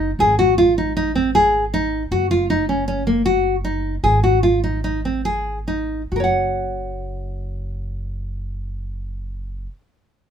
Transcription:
0.00 0.15 F#1 medium
0.19 2.07 G#1 medium
0.19 0.34 G#4 medium
0.39 0.53 F#4 medium
0.58 0.72 F4 medium
0.78 0.92 D#4 medium
0.97 1.11 D#4 medium
1.15 1.30 C4 medium
1.35 1.64 G#4 medium
1.74 2.02 D#4 medium
2.11 4.00 F#1 medium
2.11 2.26 F#4 medium
2.31 2.45 F4 medium
2.50 2.64 D#4 medium
2.69 2.83 C#4 medium
2.88 3.02 C#4 medium
3.07 3.21 A#3 soft
3.25 3.55 F#4 medium
3.64 3.94 D#4 medium
4.04 6.08 G#1 medium
4.04 4.18 G#4 medium
4.24 4.38 F#4 medium
4.43 4.58 F4 medium
4.64 4.79 D#4 soft
4.84 4.99 D#4 medium
5.05 5.21 C4 soft
5.25 5.58 G#4 medium
5.68 6.01 D#4 soft
6.12 9.66 F#1 medium
6.12 9.65 F#4 soft
6.16 6.23 A#4 soft
6.20 9.74 C#5 soft
6.20 9.77 F#5 soft

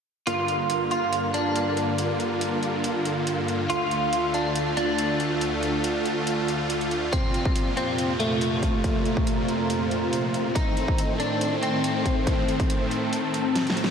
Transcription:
0.27 3.66 G2 medium
0.27 7.09 D3 medium
0.27 3.66 A#3 medium
0.27 11.73 F4 medium
0.27 10.51 F4 medium
0.27 0.83 F4 medium
0.27 closed hi-hat medium
0.48 closed hi-hat medium
0.54 3.70 A#4 medium
0.70 closed hi-hat medium
0.86 4.25 G5 medium
0.91 1.26 F4 medium
0.91 closed hi-hat soft
1.13 closed hi-hat medium
1.34 3.62 D4 medium
1.34 closed hi-hat medium
1.56 closed hi-hat medium
1.77 closed hi-hat soft
1.98 closed hi-hat medium
2.20 closed hi-hat soft
2.41 closed hi-hat medium
2.63 closed hi-hat medium
2.84 closed hi-hat medium
3.05 closed hi-hat medium
3.27 closed hi-hat medium
3.48 closed hi-hat soft
3.70 7.09 D2 medium
3.70 7.09 A3 medium
3.70 4.26 F4 medium
3.70 closed hi-hat medium
3.91 closed hi-hat soft
4.03 7.13 A5 medium
4.13 closed hi-hat medium
4.34 4.69 D4 medium
4.34 8.50 D5 loud
4.34 closed hi-hat soft
4.56 closed hi-hat medium
4.77 7.05 D4 medium
4.77 closed hi-hat medium
4.98 closed hi-hat medium
5.20 closed hi-hat soft
5.41 closed hi-hat medium
5.63 closed hi-hat soft
5.84 closed hi-hat medium
6.05 closed hi-hat soft
6.27 closed hi-hat medium
6.48 closed hi-hat medium
6.70 closed hi-hat medium
6.81 closed hi-hat soft
6.91 closed hi-hat soft
7.12 10.52 F2 medium
7.12 10.52 A#2 medium
7.12 10.52 C3 medium
7.12 7.69 C4 medium
7.12 kick loud
7.12 closed hi-hat medium
7.34 closed hi-hat soft
7.45 kick loud
7.56 closed hi-hat medium
7.77 8.12 C4 medium
7.77 13.90 C5 medium
7.77 closed hi-hat soft
7.98 closed hi-hat medium
8.20 10.47 A3 medium
8.20 closed hi-hat medium
8.36 10.56 A#5 medium
8.41 closed hi-hat medium
8.63 kick medium
8.63 closed hi-hat soft
8.84 kick loud
8.84 closed hi-hat medium
9.05 closed hi-hat soft
9.17 kick loud
9.27 closed hi-hat medium
9.48 closed hi-hat soft
9.70 closed hi-hat medium
9.91 closed hi-hat medium
10.13 closed hi-hat medium
10.34 closed hi-hat soft
10.55 13.90 A2 medium
10.55 13.90 D#3 medium
10.55 13.90 A3 medium
10.55 13.90 C4 medium
10.55 11.12 D#4 medium
10.55 kick loud
10.55 closed hi-hat medium
10.77 closed hi-hat soft
10.88 kick loud
10.98 closed hi-hat medium
11.20 11.55 D4 medium
11.20 closed hi-hat soft
11.41 closed hi-hat medium
11.50 13.90 A5 medium
11.62 13.90 C4 medium
11.62 closed hi-hat medium
11.84 closed hi-hat medium
12.05 kick medium
12.05 closed hi-hat soft
12.27 kick loud
12.27 closed hi-hat medium
12.48 closed hi-hat medium
12.60 kick loud
12.60 closed hi-hat soft
12.70 closed hi-hat medium
12.91 closed hi-hat soft
13.13 closed hi-hat medium
13.34 closed hi-hat medium
13.55 snare medium
13.55 closed hi-hat medium
13.67 snare medium
13.67 closed hi-hat soft
13.77 closed hi-hat soft
13.84 snare medium

